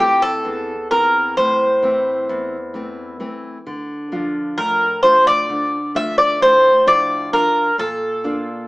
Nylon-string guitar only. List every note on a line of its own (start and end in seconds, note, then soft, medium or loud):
0.00 0.43 A2 medium
0.00 0.73 E3 soft
0.00 0.73 A3 soft
0.00 0.73 C4 medium
0.45 1.34 E2 medium
0.91 1.64 E3 soft
0.91 1.65 C4 soft
1.38 2.26 A2 medium
1.82 2.56 E3 soft
1.82 2.56 A3 soft
1.82 2.57 C4 medium
2.29 3.18 E2 medium
2.74 3.19 E3 soft
2.74 3.19 A3 soft
2.74 3.19 C4 soft
3.20 3.57 E3 soft
3.20 3.57 A3 soft
3.20 3.57 C4 medium
3.67 4.55 D3 medium
4.12 4.85 F3 soft
4.12 4.85 D4 soft
4.12 4.86 F4 medium
4.58 5.47 A2 medium
5.03 5.77 A3 soft
5.03 5.77 D4 soft
5.03 5.77 F4 medium
5.50 6.38 D3 medium
5.95 6.68 A3 medium
5.95 6.69 D4 soft
5.95 6.69 F4 medium
6.41 7.30 A2 medium
6.86 7.60 F3 soft
6.86 7.32 D4 soft
6.86 7.32 F4 soft
7.33 7.69 D4 soft
7.33 7.70 F4 medium
7.78 8.67 A#2 medium
8.24 8.68 A#3 soft
8.24 8.68 D4 soft
8.24 8.68 F4 medium